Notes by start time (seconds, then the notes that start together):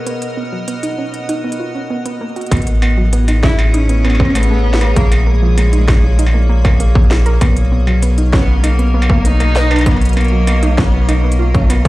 Already playing: B2 B3 A#4 D#5
0.07 B3, closed hi-hat
0.22 closed hi-hat
0.37 B3
0.52 F#3
0.68 B3, closed hi-hat
0.83 D#4, closed hi-hat
0.98 C#4
1.14 closed hi-hat
1.29 D#4, closed hi-hat
1.44 B3
1.52 closed hi-hat
1.60 F4
1.75 C#4
1.90 B3
2.06 B3, closed hi-hat
2.21 A#3
2.36 F#4, closed hi-hat
2.41 closed hi-hat
2.46 closed hi-hat
2.51 A1 A2 B3, kick, closed hi-hat, struck metal
2.57 closed hi-hat
2.62 closed hi-hat
2.67 closed hi-hat
2.80 B3 G#4, struck metal
2.98 F#3
3.04 C#5
3.09 A3
3.13 B3, closed hi-hat
3.28 D#4, closed hi-hat, struck metal
3.43 C#4 E4, kick, snare
3.59 struck metal
3.74 C#4 D#4, closed hi-hat
3.89 B3, closed hi-hat
4.05 B3, struck metal
4.10 struck metal
4.15 struck metal
4.20 B3, kick, struck metal
4.25 struck metal
4.30 struck metal
4.35 A3 B3, closed hi-hat, struck metal
4.43 closed hi-hat
4.50 A3
4.73 snare
4.81 B4, closed hi-hat, struck metal
4.96 A#1 A#2 A#3, kick, closed hi-hat
5.12 closed hi-hat, struck metal
5.22 A#3
5.27 G#3 A#3
5.42 F3
5.58 A#3, closed hi-hat, struck metal
5.73 D#4, closed hi-hat
5.88 C#4, kick, snare, struck metal
6.19 D#4, closed hi-hat
6.26 struck metal
6.34 A#3
6.49 A#3
6.65 A#3, kick, struck metal
6.80 A#3, closed hi-hat
6.95 A#3, kick
7.11 snare, struck metal
7.26 A#4, closed hi-hat
7.41 B1 B2 B3, kick, closed hi-hat, struck metal
7.56 F#3, closed hi-hat
7.72 B3 A#4
7.87 F#3, struck metal
8.02 B3, closed hi-hat
8.18 D#4, closed hi-hat
8.33 B3 C#4, kick, snare
8.64 A#3 D#4, closed hi-hat, struck metal
8.79 B3, closed hi-hat
8.85 D#5
8.94 B3
9.02 struck metal
9.10 B3, kick
9.25 A#3 D#4, closed hi-hat
9.40 A#3, closed hi-hat, struck metal
9.56 snare
9.71 B4, struck metal
9.76 closed hi-hat, struck metal
9.81 struck metal
9.86 B3, kick, closed hi-hat, struck metal
9.91 struck metal
9.96 struck metal
10.01 closed hi-hat
10.05 closed hi-hat
10.09 closed hi-hat
10.13 B3, closed hi-hat
10.17 A#3, closed hi-hat, struck metal
10.21 closed hi-hat
10.24 closed hi-hat
10.28 F#3, closed hi-hat
10.47 B3, closed hi-hat, struck metal
10.63 D#4, closed hi-hat
10.78 B3 C#4, kick, snare
11.09 A#3 D#4, closed hi-hat, struck metal
11.24 B3
11.32 closed hi-hat
11.39 F4
11.54 C#4, kick, closed hi-hat
11.70 B3, closed hi-hat, struck metal